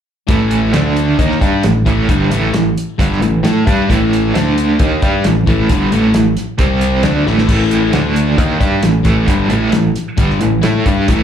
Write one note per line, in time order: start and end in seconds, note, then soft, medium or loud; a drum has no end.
0.27 0.71 A1 medium
0.27 0.72 A2 medium
0.27 0.72 E3 loud
0.27 0.72 A3 medium
0.27 kick loud
0.27 closed hi-hat medium
0.51 closed hi-hat medium
0.72 1.15 D2 medium
0.72 1.17 D3 medium
0.72 1.18 A3 medium
0.72 1.18 D4 loud
0.72 snare loud
0.72 closed hi-hat loud
0.96 snare soft
0.96 closed hi-hat medium
1.18 1.39 D#2 medium
1.18 1.40 D#3 loud
1.18 1.39 A#3 medium
1.18 1.40 D#4 loud
1.18 kick loud
1.18 closed hi-hat medium
1.31 snare soft
1.40 1.62 G2 medium
1.40 1.62 G3 medium
1.40 1.62 D4 medium
1.40 1.63 G4 loud
1.40 kick loud
1.40 closed hi-hat medium
1.63 1.85 A1 medium
1.63 1.82 A2 medium
1.63 1.82 E3 medium
1.63 snare loud
1.63 closed hi-hat medium
1.85 2.07 A1 medium
1.85 2.07 A2 medium
1.85 2.08 E3 loud
1.85 2.08 A3 loud
1.85 kick loud
1.85 closed hi-hat medium
2.09 2.30 G1 medium
2.09 2.30 G2 medium
2.09 2.29 D3 medium
2.09 2.30 G3 loud
2.09 kick loud
2.09 closed hi-hat medium
2.30 2.52 A1 medium
2.30 2.52 A2 medium
2.30 2.52 E3 medium
2.30 2.53 A3 medium
2.30 closed hi-hat medium
2.53 2.74 A1 medium
2.53 2.71 A2 medium
2.53 2.72 E3 medium
2.53 snare loud
2.53 closed hi-hat medium
2.77 closed hi-hat medium
2.98 3.20 G1 medium
2.98 3.20 G2 medium
2.98 3.19 D3 loud
2.98 3.20 G3 medium
2.98 kick loud
2.98 closed hi-hat medium
3.12 snare soft
3.20 3.42 A1 medium
3.20 3.39 A2 medium
3.20 3.39 E3 medium
3.20 closed hi-hat medium
3.43 3.64 A2 medium
3.43 3.65 A3 medium
3.43 3.66 E4 medium
3.43 3.66 A4 loud
3.43 snare loud
3.43 closed hi-hat medium
3.66 3.88 G2 medium
3.66 3.88 G3 medium
3.66 3.88 D4 medium
3.66 3.88 G4 loud
3.66 kick loud
3.66 closed hi-hat medium
3.89 4.31 A1 loud
3.89 4.33 A2 medium
3.89 4.33 E3 medium
3.89 4.33 A3 loud
3.89 kick loud
3.89 closed hi-hat medium
4.13 closed hi-hat medium
4.33 4.76 D2 medium
4.33 4.78 D3 medium
4.33 4.78 A3 medium
4.33 4.78 D4 loud
4.33 snare loud
4.33 closed hi-hat medium
4.58 closed hi-hat medium
4.79 5.00 D#2 medium
4.79 5.01 D#3 medium
4.79 5.01 A#3 medium
4.79 5.01 D#4 loud
4.79 kick loud
4.79 closed hi-hat medium
5.01 5.23 G2 medium
5.01 5.23 G3 medium
5.01 5.24 D4 medium
5.01 5.24 G4 loud
5.01 kick loud
5.01 closed hi-hat medium
5.24 5.45 A1 medium
5.24 5.42 A2 medium
5.24 5.42 E3 medium
5.24 snare loud
5.24 closed hi-hat loud
5.46 5.68 A1 medium
5.46 5.68 A2 medium
5.46 5.68 E3 medium
5.46 5.68 A3 loud
5.46 kick loud
5.46 closed hi-hat medium
5.69 5.90 G1 loud
5.69 5.91 G2 medium
5.69 5.91 D3 medium
5.69 5.91 G3 medium
5.69 kick loud
5.69 closed hi-hat loud
5.91 6.13 A1 medium
5.91 6.13 A2 medium
5.91 6.13 E3 medium
5.91 6.14 A3 medium
5.91 closed hi-hat medium
6.14 6.35 A1 medium
6.14 6.32 A2 medium
6.14 6.32 E3 medium
6.14 snare loud
6.14 closed hi-hat loud
6.37 snare soft
6.37 closed hi-hat medium
6.58 7.01 C2 medium
6.58 7.03 C3 medium
6.58 7.03 G3 medium
6.58 7.03 C4 loud
6.58 kick loud
6.58 closed hi-hat medium
6.81 closed hi-hat medium
7.03 7.25 D2 medium
7.03 7.25 D3 medium
7.03 7.25 A3 loud
7.03 7.26 D4 loud
7.03 snare loud
7.03 closed hi-hat medium
7.26 7.47 A1 medium
7.26 7.45 A2 medium
7.26 7.46 E3 medium
7.26 7.46 A3 medium
7.26 snare medium
7.38 snare medium
7.46 7.90 A1 loud
7.46 7.91 A2 medium
7.46 7.92 E3 medium
7.46 7.91 A3 loud
7.46 kick loud
7.46 closed hi-hat medium
7.46 crash medium
7.71 closed hi-hat medium
7.92 8.35 D2 medium
7.92 8.37 D3 medium
7.92 8.37 A3 medium
7.92 8.37 D4 loud
7.92 snare loud
7.92 closed hi-hat medium
8.16 closed hi-hat medium
8.37 8.59 D#2 medium
8.37 8.60 D#3 medium
8.37 8.59 A#3 loud
8.37 8.58 D#4 loud
8.37 kick loud
8.37 closed hi-hat medium
8.59 8.82 G2 medium
8.59 8.81 G3 medium
8.59 8.82 D4 medium
8.59 8.82 G4 loud
8.59 kick loud
8.59 closed hi-hat medium
8.81 9.04 A1 medium
8.81 9.00 A2 medium
8.81 9.01 E3 medium
8.81 snare loud
8.81 closed hi-hat medium
9.03 9.26 A1 medium
9.03 9.26 A2 medium
9.03 9.26 E3 medium
9.03 9.27 A3 loud
9.03 kick loud
9.03 closed hi-hat medium
9.26 9.49 G1 medium
9.26 9.49 G2 medium
9.26 9.48 D3 medium
9.26 9.48 G3 loud
9.26 kick loud
9.26 closed hi-hat loud
9.48 9.70 A2 medium
9.48 9.71 E3 medium
9.48 9.72 A3 loud
9.48 closed hi-hat medium
9.52 9.72 A1 medium
9.72 9.95 A1 medium
9.72 9.90 A2 medium
9.72 9.91 E3 medium
9.72 snare loud
9.72 closed hi-hat loud
9.96 snare soft
9.96 closed hi-hat medium
10.17 10.39 G1 medium
10.17 10.39 G2 loud
10.17 10.39 D3 medium
10.17 10.39 G3 loud
10.17 kick loud
10.17 closed hi-hat medium
10.30 snare soft
10.39 10.62 A1 medium
10.39 10.58 A2 medium
10.39 10.58 E3 medium
10.39 closed hi-hat medium
10.61 10.84 A2 medium
10.61 10.84 A3 medium
10.61 10.84 E4 medium
10.61 10.85 A4 loud
10.61 snare loud
10.61 closed hi-hat medium
10.85 11.07 G2 medium
10.85 11.07 G3 medium
10.85 11.08 D4 medium
10.85 11.08 G4 loud
10.85 kick loud
10.85 closed hi-hat medium
11.08 11.23 A1 loud
11.08 11.23 A2 medium
11.08 11.23 E3 loud
11.08 11.23 A3 loud
11.08 kick loud
11.08 closed hi-hat medium